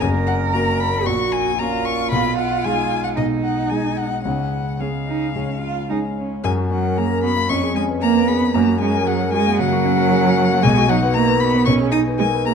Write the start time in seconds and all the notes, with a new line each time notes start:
0.00 F#1 F#2 A#4 G#5
0.27 F#5
0.52 A#3 C#4 F#4 A#5
0.79 B5
1.06 A#1 A#2 F#4 C#6
1.32 G#5
1.58 A#3 C#4 F4 F#4 A#5
1.85 C#6
2.11 B1 B2 B5
2.37 F#5
2.64 G#3 D#4 G#4 G#5
3.04 F#5
3.16 B1 B2 D#4 D#5
3.44 F#5
3.69 G#3 D#4 G#4 G#5
3.97 F#5
4.23 C#2 C#3 C#4 F#5
4.78 G#3 C#4 G#4 F5
5.06 D#4
5.35 C#2 C#3 C#4
5.61 F4
5.89 G#3 C#4 D#4 G#4
6.17 C#4
6.43 F#2 G#3 G#5
6.58 F#4
6.70 F#3 C#4 F#5
6.84 A#4
6.97 A#3 G#4 A#5
7.11 A#4
7.23 B3 F#4 B5
7.36 A#3
7.49 F2 C#4 C#6
7.63 G#4
7.74 G#3 C#4 G#5
7.89 B4
8.01 A#3 A#4 A#5
8.16 B4
8.27 B3 G#4 B5
8.42 B3
8.54 F#2 A#3 A#5
8.69 F#4
8.80 G#3 C#4 G#5
8.95 A#4
9.06 F#3 G#4 F#5
9.20 A#4
9.33 G#3 F#4 G#5
9.46 A#3
9.58 C#3 F#3 F#5
9.72 F#4
9.85 C#4
9.98 A#4
10.11 G#4
10.24 A#4
10.38 F#4
10.51 A#3
10.62 B1 G#3 G#5
10.78 F#4
10.88 F#3 D#4 F#5
11.03 B4
11.14 A#3 A#4 A#5
11.28 B4
11.40 B3 F#4 B5
11.54 B3
11.65 B1 C#4 C#6
11.81 G#4
11.91 D#4 D#6
12.07 B4
12.18 G#3 A#4 G#5
12.33 B4
12.45 A#3 G#4 A#5